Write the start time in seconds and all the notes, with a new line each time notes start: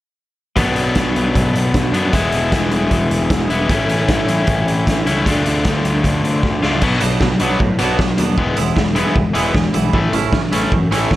0.56 B1 B2 F#3 B3 D4, kick, closed hi-hat
0.76 B1, closed hi-hat
0.95 B1, kick, snare, closed hi-hat
1.16 B1, closed hi-hat
1.35 B1, kick, closed hi-hat
1.54 B1, closed hi-hat
1.74 B1, kick, snare, closed hi-hat
1.92 F#2 B2 F#3 B3 D4, closed hi-hat
2.13 E1 E3 G#3 B3 E4, kick, closed hi-hat
2.32 E1, closed hi-hat
2.52 E1, kick, snare, closed hi-hat
2.72 E1, closed hi-hat
2.91 E1, kick, closed hi-hat
3.10 E1, closed hi-hat
3.30 E1, kick, snare, closed hi-hat
3.49 E1 E3 G#3 B3 E4, closed hi-hat
3.69 A1 A2 E3 A3 C#4 E4, kick, closed hi-hat
3.89 A1, closed hi-hat
4.08 A1, kick, snare, closed hi-hat
4.28 A1, closed hi-hat
4.47 A1, kick, closed hi-hat
4.67 A1, closed hi-hat
4.87 A1, kick, snare, closed hi-hat
5.06 C#2 A2 E3 A3 C#4 E4, closed hi-hat
5.26 D2 D3 A3 D4 F4, kick, closed hi-hat
5.46 D2, closed hi-hat
5.65 D2, kick, snare, closed hi-hat
5.84 D2, closed hi-hat
6.04 D2, kick, closed hi-hat
6.23 D2, closed hi-hat
6.43 D2, kick, snare
6.63 C#2 D3 A3 D4 F4, snare
6.81 B1 B2 F#3 B3, kick, crash
7.00 B1 B2 F#3 B3 D4, closed hi-hat
7.20 B1 B2 F#3, kick, snare
7.31 snare
7.40 B1 B2 F#3 B3 D4, closed hi-hat
7.59 A2 B2 F#3, kick
7.79 B1 B2 F#3 B3 D4, closed hi-hat
7.98 B1 B2 F#3, kick, snare
8.18 D#2 B2 F#3 B3 D4, closed hi-hat
8.37 E1 E3 G#3 B3, kick
8.57 E1 E3 G#3 B3 E4, closed hi-hat
8.76 E1 E3 G#3, kick, snare
8.95 E3 G#3 B3 E4, closed hi-hat
9.15 E1 E3 G#3, kick
9.34 E1 E3 G#3 B3 E4, closed hi-hat
9.54 E1 E3 G#3, kick, snare
9.74 B1 E3 G#3 B3 E4, closed hi-hat
9.93 A1 A2 E3 A3, kick
10.13 A1 A2 E3 A3 C#4 E4, closed hi-hat
10.33 A1 A2 E3, kick, snare
10.51 A1 A2 E3 A3 C#4 E4, closed hi-hat
10.72 F#2 A2 E3, kick
10.91 A1 A2 E3 A3 C#4 E4, closed hi-hat
11.11 A1 A2 E3, kick, snare